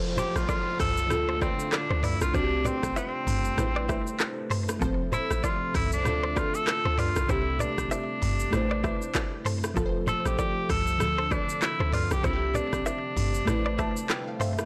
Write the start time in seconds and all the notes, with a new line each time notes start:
Already playing: F1 C3 F3 A3 F4 A4 C5, downlifter
0.17 G4 A4 C5, low bongo, low conga, shaker
0.36 A1 F4, cross-stick, shaker
0.49 F4 A4 D5, kick, high bongo, shaker
0.79 C2 A4, kick, cross-stick, mid tom, open hi-hat, shaker
0.97 shaker
1.08 D2 D3 D4 F4, cross-stick, low conga, shaker
1.13 A4
1.29 A4 C5
1.41 C4 B4 D5, kick, cross-stick, low bongo, shaker
1.60 shaker
1.72 D4, cross-stick, clap, high bongo, low bongo, shaker
1.91 D2 A4 C5
2.03 E4 B4 D5, mid tom, open hi-hat, shaker
2.21 B1 F4, cross-stick, high bongo, shaker
2.32 C2 C3 G3 C4 D4 G4 C5, kick, low conga, shaker
2.37 F#4
2.43 G4
2.65 C4 B4 D5, low bongo, low conga, shaker
2.83 A1, kick, cross-stick, shaker
2.96 C4 C5 E5, high bongo, shaker
3.27 G1, mid tom, open hi-hat, shaker
3.45 shaker
3.56 A1 C3 A3 C4 E4 B4, cross-stick, low conga, shaker
3.61 C5
3.76 B4 D5
3.89 C5 E5, kick, cross-stick, low bongo, shaker
4.07 shaker
4.20 cross-stick, clap, high bongo, low bongo, shaker
4.50 A4 C5, mid tom, open hi-hat, shaker
4.69 cross-stick, high bongo, shaker
4.79 F1 C3 F3 A3 C4 F4 A4, kick, low conga, shaker
4.84 C5
5.12 E4 A4 C5, low bongo, low conga, shaker
5.31 A1, cross-stick, shaker
5.44 F4 A4 D5, kick, high bongo, shaker
5.74 C2 E4, kick, cross-stick, mid tom, open hi-hat, shaker
5.92 D4, shaker
6.03 D2 D3 D4 F4, cross-stick, low conga, shaker
6.08 A4
6.24 A4 C5
6.36 F4 B4 D5, kick, cross-stick, low bongo, shaker
6.54 A4, shaker
6.67 cross-stick, clap, high bongo, low bongo, shaker
6.85 D2 A4 C5
6.98 F4 B4 D5, mid tom, open hi-hat, shaker
7.16 B1, cross-stick, high bongo, shaker
7.27 C2 C3 G3 C4 D4 E4 G4 C5, kick, low conga, shaker
7.32 G4
7.59 D4 B4 D5, low bongo, low conga, shaker
7.78 A1, kick, cross-stick, shaker
7.91 D4 C5 E5, high bongo, shaker
8.22 G1, mid tom, open hi-hat, shaker
8.40 shaker
8.50 A1 C3 A3 C4 E4 B4, cross-stick, low conga, shaker
8.55 C5
8.71 B4 D5
8.84 C5 E5, kick, cross-stick, low bongo, shaker
9.02 shaker
9.15 kick, cross-stick, clap, high bongo, low bongo, shaker
9.45 A4 C5, mid tom, open hi-hat, shaker
9.64 cross-stick, high bongo, shaker
9.74 F1 C3 F3 F4 A4, kick, low conga, shaker
9.79 B4
9.86 C5
10.07 A4 C5, low bongo, low conga, shaker
10.26 A1 G4, cross-stick, shaker
10.39 G4 A4 D5, kick, high bongo, shaker
10.69 C2 A4, kick, cross-stick, mid tom, open hi-hat, shaker
10.87 shaker
10.98 D2 D3 F3 A3 D4, cross-stick, low conga, shaker
11.03 A4
11.18 A4 C5
11.31 D4 B4 D5, kick, cross-stick, low bongo, shaker
11.49 shaker
11.62 E4, cross-stick, clap, high bongo, low bongo, shaker
11.80 D2 A4 C5
11.93 F4 B4 D5, mid tom, open hi-hat, shaker
12.11 B1 G4, cross-stick, high bongo, shaker
12.22 C2 C3 G3 C4 D4 E4 G4 C5, kick, low conga, shaker
12.27 F4
12.33 G4
12.54 D4 B4 D5, low bongo, low conga, shaker
12.73 A1, kick, cross-stick, shaker
12.86 D4 C5 E5, high bongo, shaker
13.17 G1, mid tom, open hi-hat, shaker
13.34 shaker
13.45 A1 C3 A3 C4 E4 B4, cross-stick, low conga, shaker
13.50 C5
13.66 B4 D5
13.79 C5 E5 A5, kick, cross-stick, low bongo, shaker
13.97 shaker
14.09 G5, cross-stick, clap, high bongo, low bongo, shaker
14.27 F5
14.40 A4 C5 E5, mid tom, open hi-hat, shaker
14.58 cross-stick, high bongo, shaker